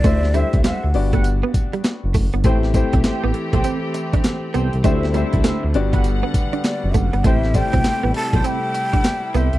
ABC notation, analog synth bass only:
X:1
M:4/4
L:1/16
Q:"Swing 16ths" 1/4=100
K:Ador
V:1 name="Analog synth bass" clef=bass
D,,3 C,, D,, D,, G,,,4 z3 F,,, F,,, G,,, | A,,,3 B,,, A,,, A,,, z B,,, z6 C,, C,, | D,,3 C,, D,, D,, G,,,4 z3 F,,, F,,, G,,, | A,,,3 B,,, A,,, A,,, z B,,, z6 C,, C,, |]